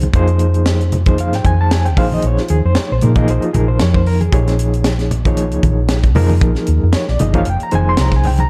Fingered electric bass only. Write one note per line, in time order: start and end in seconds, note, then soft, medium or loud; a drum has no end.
0.14 1.34 F2 medium
1.34 1.44 G#2 medium
1.45 1.97 F2 medium
1.97 2.20 A#1 medium
2.24 2.36 A#1 medium
2.50 2.63 D#2 medium
2.65 2.75 F2 medium
2.78 muted fingered electric bass stroke soft
2.92 3.01 A#1 medium
3.03 3.26 A#2 medium
3.29 3.41 A#1 medium
3.56 3.78 A#1 medium
3.82 4.27 F2 medium
4.33 5.53 A#1 medium
5.53 5.63 C#2 medium
5.63 6.16 A#1 medium
6.16 6.39 F2 medium
6.41 6.54 A#1 medium
6.68 6.81 D#2 medium
6.83 6.93 F2 medium
7.09 7.19 A#1 medium
7.20 7.43 G1 medium
7.47 7.59 F1 medium
7.61 muted fingered electric bass stroke soft
7.73 7.95 F1 medium
7.99 8.44 C2 medium